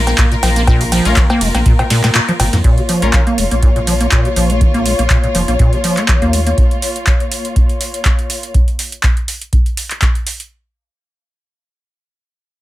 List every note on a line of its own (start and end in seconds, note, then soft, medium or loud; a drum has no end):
0.00 0.14 A#1 medium
0.00 2.60 A#3 medium
0.00 2.60 F4 medium
0.00 2.63 A#4 medium
0.07 0.11 A#3 medium
0.07 closed hi-hat medium
0.07 cowbell soft
0.18 0.26 A#2 medium
0.18 kick loud
0.18 clap loud
0.18 closed hi-hat medium
0.32 0.35 A#2 medium
0.32 closed hi-hat soft
0.43 1.01 A#1 loud
0.43 0.50 F3 medium
0.43 open hi-hat loud
0.43 ride medium
0.43 cowbell medium
0.56 0.62 A#3 medium
0.56 closed hi-hat medium
0.67 0.82 A#2 loud
0.67 kick loud
0.67 closed hi-hat medium
0.67 cowbell medium
0.81 0.85 C#3 medium
0.81 open hi-hat medium
0.92 1.07 F3 medium
0.92 open hi-hat loud
0.92 ride medium
0.92 cowbell soft
1.05 1.14 A#1 loud
1.05 1.18 A#3 medium
1.05 1.17 C#4 medium
1.05 1.17 F4 medium
1.05 1.17 A#4 loud
1.05 closed hi-hat medium
1.16 1.28 D#3 loud
1.16 kick loud
1.16 clap loud
1.16 closed hi-hat medium
1.30 1.43 A#3 loud
1.30 closed hi-hat soft
1.30 cowbell medium
1.41 1.52 F1 medium
1.41 1.49 G#3 medium
1.41 open hi-hat loud
1.41 ride medium
1.54 1.63 A#1 medium
1.54 1.58 A#3 medium
1.54 snare soft
1.54 closed hi-hat medium
1.54 cowbell soft
1.66 1.76 A#2 medium
1.66 1.73 A#2 medium
1.66 kick loud
1.66 closed hi-hat medium
1.79 1.83 A#2 medium
1.79 closed hi-hat soft
1.79 cowbell medium
1.90 2.02 A#2 loud
1.90 snare medium
1.90 open hi-hat loud
1.90 ride medium
2.03 2.10 A#2 loud
2.03 snare medium
2.03 clap soft
2.03 closed hi-hat medium
2.03 cowbell soft
2.15 2.19 A#2 loud
2.15 clap loud
2.15 closed hi-hat medium
2.28 2.32 F3 loud
2.28 closed hi-hat soft
2.40 2.50 G#1 medium
2.40 2.44 A#2 medium
2.40 open hi-hat loud
2.40 ride medium
2.40 cowbell medium
2.53 2.62 F2 medium
2.53 2.57 G#2 medium
2.53 snare soft
2.53 closed hi-hat medium
2.64 2.79 A#2 loud
2.64 8.50 A#3 medium
2.64 8.50 F4 medium
2.64 8.50 C#5 medium
2.64 kick loud
2.64 closed hi-hat medium
2.78 2.81 C#3 medium
2.78 closed hi-hat soft
2.89 3.04 F3 medium
2.89 open hi-hat loud
3.02 3.11 A#1 loud
3.02 3.15 A#3 medium
3.02 3.22 C#4 medium
3.02 3.22 F4 medium
3.02 3.22 A#4 loud
3.02 closed hi-hat medium
3.13 3.24 D#3 loud
3.13 kick loud
3.13 clap loud
3.13 closed hi-hat medium
3.27 3.39 A#3 loud
3.27 closed hi-hat soft
3.38 3.48 F1 medium
3.38 3.45 G#3 medium
3.38 open hi-hat loud
3.51 4.08 A#1 medium
3.51 3.55 A#3 medium
3.51 closed hi-hat medium
3.63 3.70 A#2 medium
3.63 kick loud
3.63 closed hi-hat medium
3.76 3.80 A#2 medium
3.76 closed hi-hat soft
3.87 3.94 F3 medium
3.87 open hi-hat loud
4.00 4.07 A#3 medium
4.00 closed hi-hat medium
4.11 4.27 A#2 loud
4.11 kick medium
4.11 clap loud
4.11 closed hi-hat medium
4.25 4.29 C#3 medium
4.25 closed hi-hat soft
4.36 4.94 A#1 loud
4.36 4.51 F3 medium
4.36 open hi-hat loud
4.50 4.62 A#3 medium
4.50 closed hi-hat medium
4.61 4.72 D#3 loud
4.61 kick loud
4.61 closed hi-hat medium
4.74 4.87 A#3 loud
4.74 closed hi-hat soft
4.86 4.93 G#3 medium
4.86 open hi-hat loud
4.99 5.08 A#1 loud
4.99 5.03 A#3 medium
4.99 closed hi-hat medium
5.10 5.17 A#2 medium
5.10 kick loud
5.10 clap loud
5.10 closed hi-hat medium
5.23 5.27 A#2 medium
5.23 closed hi-hat soft
5.35 5.45 F1 medium
5.35 5.42 F3 medium
5.35 open hi-hat loud
5.48 5.57 A#1 medium
5.48 5.54 A#3 medium
5.48 closed hi-hat soft
5.59 5.74 A#2 loud
5.59 5.70 A#2 medium
5.59 kick loud
5.59 closed hi-hat medium
5.73 5.76 C#3 medium
5.73 closed hi-hat soft
5.84 5.99 F3 medium
5.84 open hi-hat loud
5.97 6.10 A#3 medium
5.97 clap soft
5.97 closed hi-hat medium
6.08 6.20 D#3 medium
6.08 kick loud
6.08 clap loud
6.08 closed hi-hat soft
6.22 6.54 D#2 medium
6.22 6.35 A#3 loud
6.22 closed hi-hat soft
6.33 6.40 G#3 medium
6.33 open hi-hat loud
6.47 6.50 A#3 medium
6.47 closed hi-hat medium
6.58 kick loud
6.58 closed hi-hat soft
6.71 closed hi-hat soft
6.82 open hi-hat loud
6.96 closed hi-hat soft
7.07 kick loud
7.07 clap loud
7.07 closed hi-hat soft
7.20 closed hi-hat soft
7.32 open hi-hat loud
7.45 closed hi-hat soft
7.56 kick loud
7.56 closed hi-hat soft
7.69 closed hi-hat soft
7.81 open hi-hat loud
7.94 closed hi-hat soft
8.05 kick loud
8.05 clap loud
8.05 closed hi-hat soft
8.19 closed hi-hat soft
8.30 open hi-hat loud
8.43 closed hi-hat soft
8.54 kick loud
8.54 closed hi-hat soft
8.68 closed hi-hat soft
8.79 open hi-hat loud
8.92 closed hi-hat soft
9.03 kick loud
9.03 clap loud
9.03 closed hi-hat soft
9.17 closed hi-hat soft
9.28 open hi-hat loud
9.41 closed hi-hat soft
9.53 kick loud
9.53 closed hi-hat soft
9.66 closed hi-hat soft
9.77 open hi-hat loud
9.90 clap soft
9.90 closed hi-hat soft
10.02 kick loud
10.02 clap loud
10.02 closed hi-hat soft
10.15 closed hi-hat soft
10.27 open hi-hat loud
10.40 closed hi-hat soft